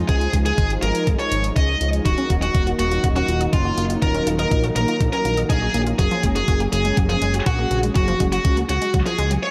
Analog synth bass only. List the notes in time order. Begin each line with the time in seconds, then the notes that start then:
0.09 C#2
0.33 C#2
0.58 G#1
0.82 G#1
1.07 G#1
1.32 G#1
1.56 C#2
1.81 C#2
2.06 D#1
2.30 D#1
2.55 D#1
2.79 D#1
3.04 D#1
3.28 D#1
3.53 F#1
3.78 F#1
4.02 D#1
4.27 D#1
4.51 A#1
4.76 A#1
5.01 A#1
5.25 A#1
5.50 A#1
5.74 A#1
5.99 F#1
6.24 F#1
6.48 F#1
6.73 F#1
6.97 F#1
7.22 F#1
7.46 A#1
7.71 A#1
7.96 F#1
8.20 F#1
8.45 C#2
8.69 C#2
8.94 C#2
9.19 C#2